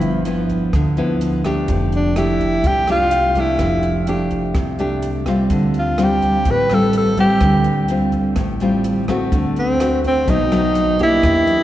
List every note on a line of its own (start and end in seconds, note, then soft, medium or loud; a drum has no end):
0.00 0.69 G1 medium
0.00 0.71 G2 medium
0.00 0.22 F3 medium
0.00 0.22 B3 medium
0.00 0.22 E4 medium
0.00 0.27 E4 medium
0.00 closed hi-hat soft
0.25 0.73 F3 soft
0.25 0.73 B3 soft
0.25 0.74 E4 medium
0.25 closed hi-hat soft
0.49 kick soft
0.49 closed hi-hat soft
0.73 1.65 D2 medium
0.73 1.67 D3 soft
0.73 kick medium
0.73 cross-stick medium
0.73 closed hi-hat soft
0.97 1.41 F3 medium
0.97 1.41 B3 medium
0.97 1.41 E4 medium
0.97 closed hi-hat soft
1.21 closed hi-hat soft
1.45 2.13 A3 medium
1.45 2.13 D4 medium
1.45 2.13 G4 medium
1.45 kick soft
1.45 cross-stick soft
1.45 closed hi-hat soft
1.68 2.60 F1 medium
1.68 2.62 F3 medium
1.68 kick soft
1.68 closed hi-hat soft
1.92 2.18 D4 medium
1.92 closed hi-hat soft
2.16 2.64 A3 medium
2.16 2.65 D4 soft
2.16 2.68 E4 medium
2.16 2.65 G4 medium
2.16 cross-stick medium
2.16 closed hi-hat soft
2.40 kick soft
2.40 closed hi-hat soft
2.64 3.56 C2 medium
2.64 3.58 C3 soft
2.64 2.89 G4 medium
2.64 kick medium
2.64 closed hi-hat soft
2.87 3.32 A3 medium
2.87 3.33 D4 medium
2.87 3.33 G4 medium
2.87 cross-stick soft
2.87 closed hi-hat soft
2.92 3.41 F4 medium
3.11 closed hi-hat soft
3.35 4.04 A3 medium
3.35 4.04 D4 medium
3.35 4.04 G4 medium
3.35 kick soft
3.35 closed hi-hat soft
3.40 4.09 E4 medium
3.59 4.51 F1 medium
3.59 4.53 F3 medium
3.59 kick soft
3.59 cross-stick soft
3.59 closed hi-hat soft
3.83 closed hi-hat soft
4.07 4.55 A3 medium
4.07 4.55 D4 soft
4.07 4.55 G4 medium
4.07 closed hi-hat soft
4.31 kick soft
4.31 closed hi-hat soft
4.55 5.46 C2 medium
4.55 5.48 C3 soft
4.55 kick medium
4.55 cross-stick soft
4.55 closed hi-hat soft
4.79 5.23 A3 medium
4.79 5.23 D4 medium
4.79 5.23 G4 medium
4.79 closed hi-hat soft
5.02 closed hi-hat soft
5.26 5.95 G3 medium
5.26 5.95 C4 medium
5.26 5.95 F4 medium
5.26 kick soft
5.26 cross-stick medium
5.26 closed hi-hat soft
5.50 6.42 D2 medium
5.50 6.44 D3 soft
5.50 kick medium
5.50 closed hi-hat soft
5.74 closed hi-hat soft
5.79 6.05 F4 medium
5.98 6.66 G3 soft
5.98 6.66 C4 medium
5.98 6.66 F4 medium
5.98 cross-stick medium
5.98 closed hi-hat soft
6.04 6.52 G4 medium
6.22 kick soft
6.22 closed hi-hat soft
6.45 7.37 A1 medium
6.45 7.39 A2 medium
6.45 kick medium
6.45 closed hi-hat soft
6.51 6.76 B4 medium
6.70 7.14 G3 medium
6.70 7.14 C4 medium
6.70 7.15 F4 medium
6.70 cross-stick soft
6.70 closed hi-hat soft
6.74 6.96 A4 medium
6.93 closed hi-hat soft
6.97 7.18 A4 medium
7.17 7.85 G3 medium
7.17 7.86 C4 medium
7.17 7.86 F4 medium
7.17 7.86 G4 medium
7.17 kick soft
7.17 closed hi-hat soft
7.41 8.32 D2 medium
7.41 8.35 D3 soft
7.41 kick medium
7.41 cross-stick medium
7.41 closed hi-hat soft
7.64 closed hi-hat soft
7.88 8.37 G3 soft
7.88 8.37 C4 medium
7.88 8.37 F4 soft
7.88 closed hi-hat soft
8.12 kick soft
8.12 closed hi-hat soft
8.36 9.28 A1 medium
8.36 9.30 A2 soft
8.36 kick medium
8.36 cross-stick medium
8.36 closed hi-hat soft
8.60 9.05 G3 medium
8.60 9.05 C4 medium
8.60 9.05 F4 medium
8.60 closed hi-hat soft
8.84 closed hi-hat soft
9.08 9.76 A3 medium
9.08 9.76 C4 medium
9.08 9.77 F#4 medium
9.08 kick soft
9.08 cross-stick medium
9.08 closed hi-hat soft
9.32 10.23 D2 medium
9.32 10.25 D3 medium
9.32 kick medium
9.32 closed hi-hat soft
9.56 10.02 C4 medium
9.56 closed hi-hat soft
9.80 10.24 A3 soft
9.80 10.24 C4 soft
9.80 10.24 F#4 medium
9.80 cross-stick medium
9.80 closed hi-hat soft
10.04 10.32 C4 medium
10.04 kick soft
10.04 closed hi-hat soft
10.27 11.19 B1 medium
10.27 11.21 B2 medium
10.27 10.42 F#3 medium
10.27 10.42 A3 medium
10.27 10.42 D#4 medium
10.27 11.01 D#4 medium
10.27 kick medium
10.27 closed hi-hat soft
10.52 10.95 F#3 medium
10.52 10.96 A3 medium
10.52 10.96 D#4 medium
10.52 cross-stick medium
10.52 closed hi-hat soft
10.75 closed hi-hat soft
10.99 11.63 A#3 medium
10.99 11.63 D4 medium
10.99 11.63 E4 loud
10.99 11.63 G4 medium
10.99 kick soft
10.99 closed hi-hat soft
11.23 11.63 E2 medium
11.23 11.63 E3 soft
11.23 kick medium
11.23 cross-stick soft
11.23 closed hi-hat soft
11.47 closed hi-hat soft